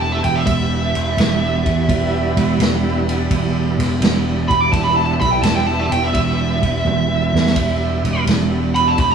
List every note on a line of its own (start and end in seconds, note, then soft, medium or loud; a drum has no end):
0.00 0.21 E1 medium
0.00 1.86 B3 medium
0.00 1.86 E4 medium
0.00 1.86 G4 medium
0.00 0.24 A5 medium
0.12 0.17 E5 medium
0.24 0.46 E1 medium
0.24 0.39 G5 medium
0.24 ride medium
0.35 0.44 E5 medium
0.47 0.93 E1 medium
0.47 2.56 E5 loud
0.47 kick loud
0.47 ride medium
0.95 1.17 E1 medium
0.95 ride medium
1.17 1.63 E1 medium
1.17 snare loud
1.17 ride medium
1.66 1.88 E2 medium
1.66 kick medium
1.66 ride medium
1.89 2.35 E1 medium
1.89 4.70 G3 medium
1.89 4.70 B3 medium
1.89 4.70 E4 medium
1.89 kick loud
1.89 ride medium
2.37 2.58 E1 medium
2.37 ride medium
2.60 3.27 E1 medium
2.60 snare loud
2.60 ride medium
3.09 ride medium
3.31 3.77 E1 medium
3.31 kick loud
3.31 ride loud
3.79 4.00 E1 medium
3.79 snare soft
3.79 ride medium
4.01 4.47 E1 medium
4.01 snare loud
4.01 ride medium
4.48 4.72 E1 medium
4.48 4.61 B5 medium
4.48 kick medium
4.48 ride medium
4.61 4.70 D6 medium
4.71 5.19 E1 medium
4.71 7.53 E3 medium
4.71 7.53 G3 medium
4.71 7.53 B3 medium
4.71 7.53 E4 medium
4.71 4.88 A5 medium
4.71 kick loud
4.71 ride loud
4.84 4.94 B5 medium
4.96 5.05 A5 medium
5.06 5.12 A5 medium
5.20 5.41 B1 medium
5.20 5.35 B5 medium
5.20 kick medium
5.20 ride medium
5.31 5.41 G5 medium
5.42 5.89 E1 medium
5.42 5.55 A5 medium
5.42 snare loud
5.42 ride medium
5.56 5.67 G5 loud
5.67 5.92 A5 medium
5.79 5.85 E5 medium
5.91 6.13 E1 medium
5.91 6.07 G5 medium
5.91 ride medium
6.04 6.13 E5 medium
6.14 6.60 E1 medium
6.14 8.23 E5 loud
6.14 kick loud
6.14 ride medium
6.63 6.85 E1 medium
6.63 kick medium
6.63 ride medium
6.85 7.31 E1 medium
6.85 high tom medium
7.33 7.55 E2 medium
7.33 snare medium
7.47 snare medium
7.56 8.02 E1 medium
7.56 9.15 G3 medium
7.56 9.15 B3 medium
7.56 9.15 E4 medium
7.56 kick loud
7.56 ride medium
8.04 8.26 E1 medium
8.04 ride medium
8.27 8.95 E1 medium
8.27 snare loud
8.27 ride medium
8.75 8.91 B5 medium
8.75 ride medium
8.87 8.96 A5 medium
8.98 9.15 E1 medium
8.98 9.11 B5 medium
8.98 kick loud
8.98 ride medium
9.11 9.15 A#5 medium